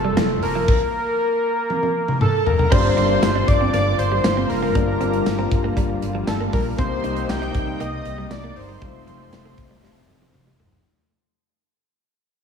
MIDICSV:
0, 0, Header, 1, 9, 480
1, 0, Start_track
1, 0, Tempo, 508475
1, 645, Time_signature, 4, 2, 24, 8
1, 11735, End_track
2, 0, Start_track
2, 0, Title_t, "Violin section"
2, 0, Program_c, 0, 48
2, 2085, Note_on_c, 0, 81, 70
2, 2308, Note_off_c, 0, 81, 0
2, 2328, Note_on_c, 0, 82, 78
2, 2566, Note_off_c, 0, 82, 0
2, 2566, Note_on_c, 0, 84, 98
2, 2796, Note_off_c, 0, 84, 0
2, 2807, Note_on_c, 0, 84, 93
2, 3253, Note_off_c, 0, 84, 0
2, 3282, Note_on_c, 0, 86, 86
2, 3512, Note_off_c, 0, 86, 0
2, 3524, Note_on_c, 0, 86, 97
2, 3747, Note_off_c, 0, 86, 0
2, 3763, Note_on_c, 0, 84, 92
2, 4210, Note_off_c, 0, 84, 0
2, 4240, Note_on_c, 0, 82, 77
2, 5682, Note_off_c, 0, 82, 0
2, 5930, Note_on_c, 0, 81, 85
2, 6037, Note_off_c, 0, 81, 0
2, 6168, Note_on_c, 0, 82, 74
2, 6275, Note_off_c, 0, 82, 0
2, 6403, Note_on_c, 0, 84, 97
2, 6850, Note_off_c, 0, 84, 0
2, 6886, Note_on_c, 0, 91, 91
2, 7365, Note_off_c, 0, 91, 0
2, 7366, Note_on_c, 0, 87, 93
2, 7845, Note_off_c, 0, 87, 0
2, 7849, Note_on_c, 0, 86, 85
2, 8070, Note_off_c, 0, 86, 0
2, 8089, Note_on_c, 0, 84, 82
2, 9767, Note_off_c, 0, 84, 0
2, 11735, End_track
3, 0, Start_track
3, 0, Title_t, "Analog synth lead"
3, 0, Program_c, 1, 81
3, 0, Note_on_c, 1, 69, 101
3, 398, Note_off_c, 1, 69, 0
3, 403, Note_on_c, 1, 70, 105
3, 2046, Note_off_c, 1, 70, 0
3, 2091, Note_on_c, 1, 69, 90
3, 2326, Note_on_c, 1, 70, 91
3, 2340, Note_off_c, 1, 69, 0
3, 2566, Note_on_c, 1, 72, 106
3, 2580, Note_off_c, 1, 70, 0
3, 2799, Note_off_c, 1, 72, 0
3, 2805, Note_on_c, 1, 72, 107
3, 3284, Note_on_c, 1, 74, 107
3, 3298, Note_off_c, 1, 72, 0
3, 3515, Note_off_c, 1, 74, 0
3, 3520, Note_on_c, 1, 74, 109
3, 3746, Note_off_c, 1, 74, 0
3, 3764, Note_on_c, 1, 72, 104
3, 4242, Note_on_c, 1, 70, 99
3, 4256, Note_off_c, 1, 72, 0
3, 5684, Note_off_c, 1, 70, 0
3, 5927, Note_on_c, 1, 69, 90
3, 6035, Note_off_c, 1, 69, 0
3, 6166, Note_on_c, 1, 70, 92
3, 6273, Note_off_c, 1, 70, 0
3, 6406, Note_on_c, 1, 72, 106
3, 6888, Note_on_c, 1, 79, 115
3, 6902, Note_off_c, 1, 72, 0
3, 7369, Note_on_c, 1, 75, 111
3, 7383, Note_off_c, 1, 79, 0
3, 7843, Note_off_c, 1, 75, 0
3, 7849, Note_on_c, 1, 74, 102
3, 8086, Note_on_c, 1, 72, 96
3, 8100, Note_off_c, 1, 74, 0
3, 9765, Note_off_c, 1, 72, 0
3, 11735, End_track
4, 0, Start_track
4, 0, Title_t, "Grand piano"
4, 0, Program_c, 2, 0
4, 0, Control_c, 2, 64, 127
4, 0, Note_on_c, 2, 58, 64
4, 0, Note_on_c, 2, 60, 58
4, 0, Note_on_c, 2, 65, 53
4, 0, Note_on_c, 2, 72, 66
4, 601, Note_off_c, 2, 58, 0
4, 605, Note_off_c, 2, 60, 0
4, 609, Note_off_c, 2, 65, 0
4, 612, Note_off_c, 2, 72, 0
4, 659, Control_c, 2, 64, 0
4, 2554, Note_on_c, 2, 58, 64
4, 2561, Note_on_c, 2, 62, 62
4, 2566, Note_on_c, 2, 43, 65
4, 2566, Note_on_c, 2, 65, 60
4, 2572, Note_on_c, 2, 67, 62
4, 2578, Note_on_c, 2, 74, 76
4, 2717, Control_c, 2, 64, 127
4, 3248, Note_off_c, 2, 43, 0
4, 4442, Note_off_c, 2, 58, 0
4, 4445, Note_off_c, 2, 62, 0
4, 4448, Note_off_c, 2, 65, 0
4, 4451, Note_off_c, 2, 67, 0
4, 4454, Note_off_c, 2, 74, 0
4, 4475, Note_on_c, 2, 58, 65
4, 4481, Note_on_c, 2, 62, 61
4, 4487, Note_on_c, 2, 43, 65
4, 4487, Note_on_c, 2, 65, 57
4, 4492, Note_on_c, 2, 67, 63
4, 4499, Note_on_c, 2, 74, 71
4, 5168, Note_off_c, 2, 43, 0
4, 6362, Note_off_c, 2, 58, 0
4, 6365, Note_off_c, 2, 62, 0
4, 6368, Note_off_c, 2, 65, 0
4, 6371, Note_off_c, 2, 67, 0
4, 6374, Note_off_c, 2, 74, 0
4, 6393, Note_on_c, 2, 58, 70
4, 6399, Note_on_c, 2, 60, 61
4, 6404, Note_on_c, 2, 48, 65
4, 6404, Note_on_c, 2, 63, 59
4, 6410, Note_on_c, 2, 67, 60
4, 6416, Note_on_c, 2, 72, 77
4, 6417, Control_c, 2, 64, 0
4, 6605, Control_c, 2, 64, 127
4, 7087, Note_off_c, 2, 48, 0
4, 8281, Note_off_c, 2, 58, 0
4, 8284, Note_off_c, 2, 60, 0
4, 8287, Note_off_c, 2, 63, 0
4, 8290, Note_off_c, 2, 67, 0
4, 8292, Note_off_c, 2, 72, 0
4, 8311, Note_on_c, 2, 57, 67
4, 8317, Note_on_c, 2, 60, 61
4, 8322, Note_on_c, 2, 63, 58
4, 8327, Note_on_c, 2, 65, 62
4, 8334, Note_on_c, 2, 72, 66
4, 8338, Control_c, 2, 64, 0
4, 8506, Control_c, 2, 64, 127
4, 10200, Note_off_c, 2, 57, 0
4, 10203, Note_off_c, 2, 60, 0
4, 10206, Note_off_c, 2, 63, 0
4, 10208, Note_off_c, 2, 65, 0
4, 10211, Note_off_c, 2, 72, 0
4, 10258, Control_c, 2, 64, 0
4, 11735, End_track
5, 0, Start_track
5, 0, Title_t, "Clean electric guitar"
5, 0, Program_c, 3, 27
5, 43, Note_on_c, 3, 55, 67
5, 126, Note_off_c, 3, 55, 0
5, 163, Note_on_c, 3, 53, 73
5, 246, Note_off_c, 3, 53, 0
5, 523, Note_on_c, 3, 53, 77
5, 606, Note_off_c, 3, 53, 0
5, 2565, Note_on_c, 3, 60, 89
5, 2647, Note_off_c, 3, 60, 0
5, 2804, Note_on_c, 3, 62, 83
5, 2887, Note_off_c, 3, 62, 0
5, 3166, Note_on_c, 3, 62, 85
5, 3248, Note_off_c, 3, 62, 0
5, 3406, Note_on_c, 3, 60, 66
5, 3488, Note_off_c, 3, 60, 0
5, 3527, Note_on_c, 3, 58, 93
5, 3609, Note_off_c, 3, 58, 0
5, 3886, Note_on_c, 3, 55, 77
5, 3968, Note_off_c, 3, 55, 0
5, 4126, Note_on_c, 3, 60, 81
5, 4208, Note_off_c, 3, 60, 0
5, 4366, Note_on_c, 3, 58, 80
5, 4448, Note_off_c, 3, 58, 0
5, 4485, Note_on_c, 3, 58, 100
5, 4567, Note_off_c, 3, 58, 0
5, 4726, Note_on_c, 3, 60, 77
5, 4808, Note_off_c, 3, 60, 0
5, 5085, Note_on_c, 3, 60, 76
5, 5167, Note_off_c, 3, 60, 0
5, 5326, Note_on_c, 3, 58, 81
5, 5408, Note_off_c, 3, 58, 0
5, 5444, Note_on_c, 3, 55, 90
5, 5527, Note_off_c, 3, 55, 0
5, 5804, Note_on_c, 3, 53, 75
5, 5887, Note_off_c, 3, 53, 0
5, 6046, Note_on_c, 3, 58, 81
5, 6128, Note_off_c, 3, 58, 0
5, 6167, Note_on_c, 3, 55, 81
5, 6249, Note_off_c, 3, 55, 0
5, 6406, Note_on_c, 3, 60, 93
5, 6488, Note_off_c, 3, 60, 0
5, 6645, Note_on_c, 3, 63, 78
5, 6727, Note_off_c, 3, 63, 0
5, 7004, Note_on_c, 3, 63, 83
5, 7087, Note_off_c, 3, 63, 0
5, 7242, Note_on_c, 3, 60, 67
5, 7325, Note_off_c, 3, 60, 0
5, 7364, Note_on_c, 3, 58, 90
5, 7447, Note_off_c, 3, 58, 0
5, 7724, Note_on_c, 3, 55, 74
5, 7806, Note_off_c, 3, 55, 0
5, 7965, Note_on_c, 3, 58, 84
5, 8048, Note_off_c, 3, 58, 0
5, 8203, Note_on_c, 3, 55, 76
5, 8286, Note_off_c, 3, 55, 0
5, 8326, Note_on_c, 3, 55, 95
5, 8408, Note_off_c, 3, 55, 0
5, 8565, Note_on_c, 3, 53, 74
5, 8647, Note_off_c, 3, 53, 0
5, 8925, Note_on_c, 3, 57, 78
5, 9007, Note_off_c, 3, 57, 0
5, 9165, Note_on_c, 3, 55, 81
5, 9247, Note_off_c, 3, 55, 0
5, 9284, Note_on_c, 3, 55, 85
5, 9367, Note_off_c, 3, 55, 0
5, 9647, Note_on_c, 3, 53, 69
5, 9729, Note_off_c, 3, 53, 0
5, 9885, Note_on_c, 3, 55, 76
5, 9967, Note_off_c, 3, 55, 0
5, 10005, Note_on_c, 3, 57, 75
5, 10087, Note_off_c, 3, 57, 0
5, 11735, End_track
6, 0, Start_track
6, 0, Title_t, "Analog synth pad"
6, 0, Program_c, 4, 89
6, 2566, Note_on_c, 4, 50, 79
6, 2566, Note_on_c, 4, 58, 73
6, 2567, Note_on_c, 4, 55, 77
6, 2567, Note_on_c, 4, 65, 88
6, 6368, Note_off_c, 4, 50, 0
6, 6368, Note_off_c, 4, 58, 0
6, 6368, Note_off_c, 4, 65, 0
6, 6406, Note_on_c, 4, 63, 90
6, 6407, Note_on_c, 4, 48, 78
6, 6407, Note_on_c, 4, 58, 71
6, 8288, Note_off_c, 4, 55, 0
6, 8307, Note_off_c, 4, 48, 0
6, 8307, Note_off_c, 4, 58, 0
6, 8325, Note_on_c, 4, 53, 70
6, 8326, Note_on_c, 4, 48, 80
6, 8326, Note_on_c, 4, 57, 75
6, 10208, Note_off_c, 4, 63, 0
6, 10226, Note_off_c, 4, 48, 0
6, 10226, Note_off_c, 4, 53, 0
6, 10226, Note_off_c, 4, 57, 0
6, 11735, End_track
7, 0, Start_track
7, 0, Title_t, "Fingered electric bass"
7, 0, Program_c, 5, 33
7, 0, Note_on_c, 5, 29, 93
7, 98, Note_off_c, 5, 29, 0
7, 164, Note_on_c, 5, 29, 100
7, 337, Note_off_c, 5, 29, 0
7, 404, Note_on_c, 5, 29, 82
7, 577, Note_off_c, 5, 29, 0
7, 2567, Note_on_c, 5, 31, 108
7, 2739, Note_off_c, 5, 31, 0
7, 2806, Note_on_c, 5, 31, 105
7, 2979, Note_off_c, 5, 31, 0
7, 3045, Note_on_c, 5, 31, 102
7, 3218, Note_off_c, 5, 31, 0
7, 3287, Note_on_c, 5, 31, 99
7, 3459, Note_off_c, 5, 31, 0
7, 3526, Note_on_c, 5, 31, 106
7, 3699, Note_off_c, 5, 31, 0
7, 3767, Note_on_c, 5, 31, 105
7, 3939, Note_off_c, 5, 31, 0
7, 4007, Note_on_c, 5, 31, 111
7, 4179, Note_off_c, 5, 31, 0
7, 4247, Note_on_c, 5, 29, 83
7, 4419, Note_off_c, 5, 29, 0
7, 4488, Note_on_c, 5, 31, 114
7, 4659, Note_off_c, 5, 31, 0
7, 4727, Note_on_c, 5, 31, 105
7, 4899, Note_off_c, 5, 31, 0
7, 4966, Note_on_c, 5, 31, 101
7, 5138, Note_off_c, 5, 31, 0
7, 5206, Note_on_c, 5, 31, 99
7, 5379, Note_off_c, 5, 31, 0
7, 5445, Note_on_c, 5, 31, 97
7, 5618, Note_off_c, 5, 31, 0
7, 5687, Note_on_c, 5, 31, 104
7, 5859, Note_off_c, 5, 31, 0
7, 5927, Note_on_c, 5, 31, 110
7, 6099, Note_off_c, 5, 31, 0
7, 6167, Note_on_c, 5, 34, 79
7, 6339, Note_off_c, 5, 34, 0
7, 6405, Note_on_c, 5, 36, 117
7, 6578, Note_off_c, 5, 36, 0
7, 6647, Note_on_c, 5, 36, 101
7, 6819, Note_off_c, 5, 36, 0
7, 6886, Note_on_c, 5, 36, 91
7, 7058, Note_off_c, 5, 36, 0
7, 7124, Note_on_c, 5, 36, 101
7, 7297, Note_off_c, 5, 36, 0
7, 7368, Note_on_c, 5, 36, 104
7, 7540, Note_off_c, 5, 36, 0
7, 7608, Note_on_c, 5, 36, 104
7, 7779, Note_off_c, 5, 36, 0
7, 7848, Note_on_c, 5, 36, 99
7, 8019, Note_off_c, 5, 36, 0
7, 8086, Note_on_c, 5, 31, 86
7, 8259, Note_off_c, 5, 31, 0
7, 8325, Note_on_c, 5, 29, 112
7, 8498, Note_off_c, 5, 29, 0
7, 8565, Note_on_c, 5, 29, 101
7, 8737, Note_off_c, 5, 29, 0
7, 8806, Note_on_c, 5, 29, 92
7, 8978, Note_off_c, 5, 29, 0
7, 9045, Note_on_c, 5, 29, 94
7, 9217, Note_off_c, 5, 29, 0
7, 9286, Note_on_c, 5, 29, 102
7, 9458, Note_off_c, 5, 29, 0
7, 9526, Note_on_c, 5, 29, 96
7, 9698, Note_off_c, 5, 29, 0
7, 9767, Note_on_c, 5, 29, 88
7, 9939, Note_off_c, 5, 29, 0
7, 10007, Note_on_c, 5, 31, 82
7, 10179, Note_off_c, 5, 31, 0
7, 11735, End_track
8, 0, Start_track
8, 0, Title_t, "Muted clean electric guitar strokes"
8, 403, Note_on_c, 9, 29, 45
8, 498, Note_off_c, 9, 29, 0
8, 2924, Note_on_c, 9, 29, 49
8, 3018, Note_off_c, 9, 29, 0
8, 3287, Note_on_c, 9, 29, 48
8, 3381, Note_off_c, 9, 29, 0
8, 3766, Note_on_c, 9, 29, 47
8, 3860, Note_off_c, 9, 29, 0
8, 4246, Note_on_c, 9, 29, 49
8, 4341, Note_off_c, 9, 29, 0
8, 4846, Note_on_c, 9, 29, 46
8, 4940, Note_off_c, 9, 29, 0
8, 5207, Note_on_c, 9, 29, 48
8, 5301, Note_off_c, 9, 29, 0
8, 5567, Note_on_c, 9, 29, 47
8, 5661, Note_off_c, 9, 29, 0
8, 5926, Note_on_c, 9, 29, 48
8, 6021, Note_off_c, 9, 29, 0
8, 6765, Note_on_c, 9, 29, 47
8, 6859, Note_off_c, 9, 29, 0
8, 7123, Note_on_c, 9, 29, 49
8, 7218, Note_off_c, 9, 29, 0
8, 7606, Note_on_c, 9, 29, 46
8, 7700, Note_off_c, 9, 29, 0
8, 8085, Note_on_c, 9, 29, 46
8, 8179, Note_off_c, 9, 29, 0
8, 8687, Note_on_c, 9, 29, 46
8, 8781, Note_off_c, 9, 29, 0
8, 9044, Note_on_c, 9, 29, 44
8, 9139, Note_off_c, 9, 29, 0
8, 9405, Note_on_c, 9, 29, 44
8, 9499, Note_off_c, 9, 29, 0
8, 9766, Note_on_c, 9, 29, 43
8, 9860, Note_off_c, 9, 29, 0
8, 11735, End_track
9, 0, Start_track
9, 0, Title_t, "Drums"
9, 160, Note_on_c, 9, 38, 118
9, 161, Note_on_c, 9, 42, 96
9, 254, Note_off_c, 9, 38, 0
9, 256, Note_off_c, 9, 42, 0
9, 401, Note_on_c, 9, 46, 71
9, 496, Note_off_c, 9, 46, 0
9, 643, Note_on_c, 9, 49, 85
9, 644, Note_on_c, 9, 36, 100
9, 738, Note_off_c, 9, 36, 0
9, 738, Note_off_c, 9, 49, 0
9, 1605, Note_on_c, 9, 48, 55
9, 1700, Note_off_c, 9, 48, 0
9, 1728, Note_on_c, 9, 48, 54
9, 1822, Note_off_c, 9, 48, 0
9, 1967, Note_on_c, 9, 47, 63
9, 2061, Note_off_c, 9, 47, 0
9, 2086, Note_on_c, 9, 45, 82
9, 2180, Note_off_c, 9, 45, 0
9, 2327, Note_on_c, 9, 43, 93
9, 2421, Note_off_c, 9, 43, 0
9, 2447, Note_on_c, 9, 43, 87
9, 2541, Note_off_c, 9, 43, 0
9, 2566, Note_on_c, 9, 36, 110
9, 2567, Note_on_c, 9, 49, 99
9, 2661, Note_off_c, 9, 36, 0
9, 2661, Note_off_c, 9, 49, 0
9, 2808, Note_on_c, 9, 42, 72
9, 2902, Note_off_c, 9, 42, 0
9, 3045, Note_on_c, 9, 42, 99
9, 3047, Note_on_c, 9, 38, 121
9, 3048, Note_on_c, 9, 54, 70
9, 3140, Note_off_c, 9, 42, 0
9, 3141, Note_off_c, 9, 38, 0
9, 3142, Note_off_c, 9, 54, 0
9, 3285, Note_on_c, 9, 42, 79
9, 3287, Note_on_c, 9, 36, 99
9, 3379, Note_off_c, 9, 42, 0
9, 3381, Note_off_c, 9, 36, 0
9, 3528, Note_on_c, 9, 42, 87
9, 3622, Note_off_c, 9, 42, 0
9, 3766, Note_on_c, 9, 42, 77
9, 3861, Note_off_c, 9, 42, 0
9, 4005, Note_on_c, 9, 38, 125
9, 4005, Note_on_c, 9, 54, 71
9, 4006, Note_on_c, 9, 42, 94
9, 4099, Note_off_c, 9, 38, 0
9, 4100, Note_off_c, 9, 42, 0
9, 4100, Note_off_c, 9, 54, 0
9, 4245, Note_on_c, 9, 46, 78
9, 4340, Note_off_c, 9, 46, 0
9, 4486, Note_on_c, 9, 42, 77
9, 4487, Note_on_c, 9, 36, 107
9, 4580, Note_off_c, 9, 42, 0
9, 4581, Note_off_c, 9, 36, 0
9, 4728, Note_on_c, 9, 42, 70
9, 4823, Note_off_c, 9, 42, 0
9, 4847, Note_on_c, 9, 42, 57
9, 4942, Note_off_c, 9, 42, 0
9, 4967, Note_on_c, 9, 42, 101
9, 4968, Note_on_c, 9, 38, 107
9, 4970, Note_on_c, 9, 54, 67
9, 5062, Note_off_c, 9, 42, 0
9, 5063, Note_off_c, 9, 38, 0
9, 5064, Note_off_c, 9, 54, 0
9, 5205, Note_on_c, 9, 42, 76
9, 5207, Note_on_c, 9, 36, 103
9, 5299, Note_off_c, 9, 42, 0
9, 5301, Note_off_c, 9, 36, 0
9, 5444, Note_on_c, 9, 36, 97
9, 5449, Note_on_c, 9, 42, 85
9, 5539, Note_off_c, 9, 36, 0
9, 5544, Note_off_c, 9, 42, 0
9, 5686, Note_on_c, 9, 42, 80
9, 5781, Note_off_c, 9, 42, 0
9, 5922, Note_on_c, 9, 38, 118
9, 5923, Note_on_c, 9, 54, 70
9, 5924, Note_on_c, 9, 42, 103
9, 6017, Note_off_c, 9, 38, 0
9, 6017, Note_off_c, 9, 54, 0
9, 6018, Note_off_c, 9, 42, 0
9, 6163, Note_on_c, 9, 46, 81
9, 6167, Note_on_c, 9, 36, 93
9, 6257, Note_off_c, 9, 46, 0
9, 6261, Note_off_c, 9, 36, 0
9, 6404, Note_on_c, 9, 42, 82
9, 6405, Note_on_c, 9, 36, 107
9, 6498, Note_off_c, 9, 42, 0
9, 6499, Note_off_c, 9, 36, 0
9, 6645, Note_on_c, 9, 42, 68
9, 6740, Note_off_c, 9, 42, 0
9, 6764, Note_on_c, 9, 42, 60
9, 6858, Note_off_c, 9, 42, 0
9, 6884, Note_on_c, 9, 42, 96
9, 6885, Note_on_c, 9, 38, 108
9, 6886, Note_on_c, 9, 54, 70
9, 6978, Note_off_c, 9, 42, 0
9, 6979, Note_off_c, 9, 38, 0
9, 6980, Note_off_c, 9, 54, 0
9, 7007, Note_on_c, 9, 42, 43
9, 7102, Note_off_c, 9, 42, 0
9, 7121, Note_on_c, 9, 42, 77
9, 7124, Note_on_c, 9, 36, 102
9, 7215, Note_off_c, 9, 42, 0
9, 7219, Note_off_c, 9, 36, 0
9, 7366, Note_on_c, 9, 42, 89
9, 7461, Note_off_c, 9, 42, 0
9, 7604, Note_on_c, 9, 42, 80
9, 7698, Note_off_c, 9, 42, 0
9, 7842, Note_on_c, 9, 38, 127
9, 7842, Note_on_c, 9, 54, 67
9, 7843, Note_on_c, 9, 42, 96
9, 7936, Note_off_c, 9, 38, 0
9, 7937, Note_off_c, 9, 54, 0
9, 7938, Note_off_c, 9, 42, 0
9, 8083, Note_on_c, 9, 46, 78
9, 8178, Note_off_c, 9, 46, 0
9, 8324, Note_on_c, 9, 36, 111
9, 8324, Note_on_c, 9, 42, 81
9, 8418, Note_off_c, 9, 42, 0
9, 8419, Note_off_c, 9, 36, 0
9, 8567, Note_on_c, 9, 42, 65
9, 8661, Note_off_c, 9, 42, 0
9, 8804, Note_on_c, 9, 42, 94
9, 8805, Note_on_c, 9, 38, 109
9, 8806, Note_on_c, 9, 54, 67
9, 8898, Note_off_c, 9, 42, 0
9, 8899, Note_off_c, 9, 38, 0
9, 8901, Note_off_c, 9, 54, 0
9, 9040, Note_on_c, 9, 42, 79
9, 9043, Note_on_c, 9, 36, 104
9, 9134, Note_off_c, 9, 42, 0
9, 9138, Note_off_c, 9, 36, 0
9, 9284, Note_on_c, 9, 38, 58
9, 9378, Note_off_c, 9, 38, 0
9, 9524, Note_on_c, 9, 48, 74
9, 9618, Note_off_c, 9, 48, 0
9, 9645, Note_on_c, 9, 48, 65
9, 9739, Note_off_c, 9, 48, 0
9, 9763, Note_on_c, 9, 47, 89
9, 9857, Note_off_c, 9, 47, 0
9, 10003, Note_on_c, 9, 43, 102
9, 10098, Note_off_c, 9, 43, 0
9, 10124, Note_on_c, 9, 43, 94
9, 10218, Note_off_c, 9, 43, 0
9, 11735, End_track
0, 0, End_of_file